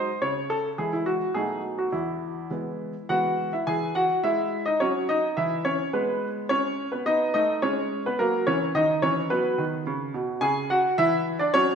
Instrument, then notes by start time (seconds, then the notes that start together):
grand piano
Already playing: C5
0.22 C#3 C#5
0.50 A4
0.78 E3 G#3 E4 G#4
0.93 E4
1.06 F#4
1.34 B2 F#3 A3 D#4 G#4
1.78 F#4
1.92 E2 E4
2.51 E3 G#3 B3
3.09 E3 G#3 B3 F#4 F#5
3.53 E4 E5
3.67 E3 G#4 G#5
3.95 F#4 F#5
4.24 G#3 E4 E5
4.66 D#4 D#5
4.80 F#3 C#4 C#5
5.09 D#4 D#5
5.37 E3 E4 E5
5.65 C#4 C#5
5.93 G#3 B3 B4
6.49 C#4 C#5
6.92 B3 B4
7.06 B3 D#4 D#5
7.34 A3 D#4 D#5
7.62 G#3 C#4 C#5
8.06 B3 B4
8.19 F#3 A#3 A#4
8.47 E3 C#4 C#5
8.75 D#3 D#4 D#5
9.02 E3 C#4 C#5
9.30 F#3 B3 B4
9.58 D#3
9.87 C#3
10.14 B2
10.41 C#3 G#4 G#5
10.70 F#4 F#5
10.98 E3 E4 E5
11.39 D4 D5
11.54 F#3 C#4 C#5